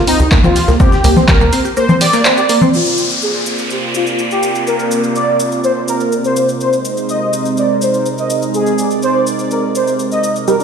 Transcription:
0.00 0.14 C2 medium
0.07 0.16 C4 loud
0.07 0.34 D#4 medium
0.07 open hi-hat loud
0.07 shaker medium
0.20 0.36 C2 medium
0.20 0.23 G4 medium
0.20 shaker medium
0.20 shaker soft
0.32 0.40 A#3 loud
0.32 kick loud
0.32 snare loud
0.32 clap loud
0.32 shaker medium
0.32 shaker soft
0.44 0.60 C2 loud
0.44 0.52 C4 loud
0.44 0.70 F4 loud
0.44 low conga medium
0.44 shaker soft
0.56 0.59 G4 medium
0.56 snare medium
0.56 open hi-hat medium
0.56 shaker medium
0.68 0.98 C2 medium
0.68 0.76 A#3 loud
0.68 snare medium
0.68 shaker soft
0.80 0.88 C4 loud
0.80 1.15 G4 loud
0.80 kick loud
0.80 shaker medium
0.80 shaker soft
0.92 0.95 G4 medium
0.92 snare medium
0.92 shaker soft
1.04 1.13 C2 loud
1.04 1.12 A#3 loud
1.04 snare soft
1.04 open hi-hat loud
1.04 shaker medium
1.17 1.24 C4 loud
1.17 snare soft
1.17 low conga medium
1.17 shaker soft
1.28 1.32 G4 medium
1.28 1.63 A#4 loud
1.28 kick loud
1.28 snare loud
1.28 clap loud
1.28 shaker medium
1.28 shaker soft
1.41 1.49 C2 loud
1.41 1.49 A#3 loud
1.41 shaker soft
1.53 1.61 C4 loud
1.53 open hi-hat medium
1.53 shaker medium
1.65 1.68 G4 medium
1.65 shaker soft
1.77 1.85 A#3 loud
1.77 1.94 C5 medium
1.77 shaker medium
1.77 shaker soft
1.89 1.97 C4 loud
1.89 low conga medium
1.89 shaker soft
2.01 2.04 G4 medium
2.01 2.27 D5 loud
2.01 snare loud
2.01 open hi-hat loud
2.01 shaker medium
2.13 2.21 A#3 loud
2.13 snare loud
2.13 shaker medium
2.13 shaker soft
2.25 2.33 C4 loud
2.25 snare loud
2.25 clap loud
2.25 shaker medium
2.25 shaker soft
2.37 2.41 G4 medium
2.37 2.64 D5 medium
2.37 shaker soft
2.49 2.57 A#3 loud
2.49 open hi-hat medium
2.49 shaker medium
2.62 2.69 C4 loud
2.62 low conga loud
2.62 shaker soft
2.74 10.64 C3 medium
2.74 6.57 A#3 medium
2.74 3.09 F4 loud
2.74 6.57 F4 medium
2.74 4.65 C5 medium
2.74 6.57 D5 medium
2.74 downlifter medium
2.74 shaker soft
2.86 shaker soft
2.98 shaker medium
3.10 shaker soft
3.22 3.57 G#4 loud
3.22 shaker soft
3.46 shaker medium
3.58 shaker soft
3.70 3.88 G4 medium
3.70 shaker soft
3.94 4.21 F4 medium
3.94 shaker medium
4.07 shaker soft
4.19 shaker soft
4.31 4.57 G4 medium
4.31 shaker soft
4.43 shaker medium
4.55 shaker soft
4.67 5.02 A#4 loud
4.67 10.64 A#4 medium
4.67 shaker soft
4.79 shaker soft
4.91 shaker medium
5.04 shaker soft
5.15 5.50 D5 loud
5.15 shaker soft
5.40 shaker medium
5.52 shaker soft
5.64 5.81 C5 medium
5.64 shaker soft
5.88 6.14 A#4 medium
5.88 shaker medium
6.00 shaker soft
6.12 shaker soft
6.24 6.51 C5 medium
6.24 shaker soft
6.36 shaker medium
6.49 shaker soft
6.60 10.44 G#3 medium
6.60 10.44 D#4 medium
6.60 6.96 C5 loud
6.60 8.52 C5 medium
6.60 shaker soft
6.73 shaker soft
6.85 shaker medium
6.97 shaker soft
7.09 7.44 D#5 loud
7.09 shaker soft
7.33 shaker medium
7.45 shaker soft
7.57 7.75 D5 medium
7.57 shaker soft
7.82 8.08 C5 medium
7.82 shaker medium
7.94 shaker soft
8.06 shaker soft
8.18 8.44 D#5 medium
8.18 shaker soft
8.30 shaker medium
8.42 shaker soft
8.54 8.89 G#4 loud
8.54 10.46 D5 medium
8.54 shaker soft
8.66 shaker soft
8.78 shaker medium
8.91 shaker soft
9.03 9.38 C5 medium
9.03 shaker soft
9.27 shaker medium
9.39 shaker soft
9.51 9.68 A#4 medium
9.51 shaker soft
9.75 10.01 C5 medium
9.75 shaker medium
9.87 shaker soft
9.99 shaker soft
10.12 10.38 D#5 medium
10.12 shaker soft
10.24 shaker medium
10.36 shaker soft
10.48 10.56 G3 loud
10.48 10.64 G3 medium
10.48 10.64 G4 medium
10.48 10.64 A#4 loud
10.48 10.64 D5 medium
10.48 shaker soft
10.60 10.63 D4 medium
10.60 shaker soft

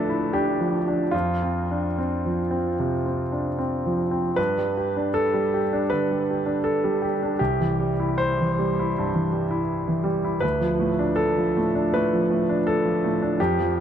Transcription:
0.00 1.16 D2 soft
0.00 1.15 A2 soft
0.00 0.60 F3 soft
0.00 0.34 D4 soft
0.00 0.09 E4 soft
0.00 0.33 A4 medium
0.00 1.15 B4 medium
0.00 1.16 D5 medium
0.09 0.34 E4 soft
0.33 0.76 D4 soft
0.33 1.13 G4 medium
0.60 1.03 F3 soft
0.88 1.14 D4 soft
1.11 2.73 F2 soft
1.11 3.56 F4 medium
1.42 1.85 C4 soft
1.71 1.97 D4 soft
1.98 2.40 C4 soft
2.26 2.67 F3 soft
2.51 2.93 C4 soft
2.80 3.21 C3 soft
3.06 3.48 C4 soft
3.32 3.58 D4 soft
3.59 4.01 C4 soft
3.86 4.28 F3 soft
4.11 4.38 C4 soft
4.36 5.86 G2 soft
4.36 5.13 B4 medium
4.58 4.88 G3 soft
4.77 5.07 G4 soft
4.97 5.56 D4 soft
5.14 5.89 A4 medium
5.34 5.63 G3 soft
5.54 5.83 G4 soft
5.73 6.02 D4 soft
5.90 6.21 D3 soft
5.90 6.64 B4 medium
6.11 6.40 G3 soft
6.31 6.59 G4 soft
6.46 7.05 D4 soft
6.64 7.39 A4 medium
6.84 7.13 G3 soft
7.02 7.32 G4 soft
7.23 7.40 D4 soft
7.39 8.92 C2 soft
7.39 8.19 G4 medium
7.60 7.92 E3 soft
7.80 8.12 G3 soft
8.00 8.62 E4 soft
8.18 10.05 C5 medium
8.40 8.70 E3 soft
8.59 8.88 G3 soft
8.79 9.08 E4 soft
8.98 9.26 G2 soft
9.15 9.43 E3 soft
9.32 9.62 G3 soft
9.51 10.10 E4 soft
9.88 10.17 E3 soft
10.04 10.34 G3 soft
10.24 10.43 E4 soft
10.40 11.86 D2 soft
10.40 11.16 B4 medium
10.61 10.91 F3 soft
10.79 11.09 A2 soft
10.99 11.58 D4 soft
11.16 11.90 A4 medium
11.37 11.66 F3 soft
11.56 11.85 A2 soft
11.75 12.03 D4 soft
11.94 12.23 A2 soft
11.94 12.66 B4 medium
12.13 12.41 F3 soft
12.30 12.58 A2 soft
12.49 13.06 D4 soft
12.67 13.39 A4 medium
12.85 13.13 F3 soft
13.04 13.32 A2 soft
13.22 13.39 D4 soft
13.40 13.80 F2 soft
13.40 13.80 G4 medium
13.60 13.80 F3 soft

